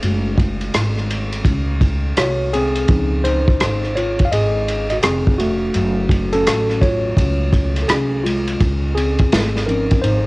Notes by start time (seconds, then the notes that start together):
0.03 F#1 G#3 A3 F#4, ride
0.38 kick, ride
0.61 ride
0.74 G#1, cross-stick, hi-hat pedal, ride
0.97 cross-stick
1.10 ride
1.32 ride
1.45 C#2, kick, ride
1.81 kick, ride
2.17 C2 F#4 C#5, cross-stick, hi-hat pedal, ride
2.53 C4 G#4, ride
2.75 ride
2.88 C#2 F3 C4 D#4, kick, ride
3.24 D#4 C5, ride
3.48 kick
3.60 G#1, cross-stick, hi-hat pedal, ride
3.84 cross-stick
3.96 F4 C#5, ride
4.19 kick, ride
4.25 F5
4.32 G#1 G#4 D#5, ride
4.68 ride
4.90 F#4 D#5, ride
5.03 F1 C4 G#4, cross-stick, hi-hat pedal, ride
5.27 kick
5.38 A3 F#4, ride
5.74 F#1 F#3 A3 F#4, ride
6.09 kick, ride
6.33 C#4 A4, ride
6.47 A1, cross-stick, hi-hat pedal, ride
6.70 cross-stick
6.81 F4 C#5, kick, ride
7.17 C#2, kick, ride
7.53 kick, ride
7.76 cross-stick, ride
7.83 A4
7.88 C2 C#4 G#4, cross-stick, hi-hat pedal, ride
8.23 G#3 F4, ride
8.47 ride
8.60 C#2, kick, ride
8.95 C4 G#4, ride
9.19 kick, ride
9.32 G#1, snare, hi-hat pedal, ride
9.56 snare
9.66 F3 C4 C#4 D#4 A#4, ride
9.91 kick, ride
10.02 G#1 D#4 C5, ride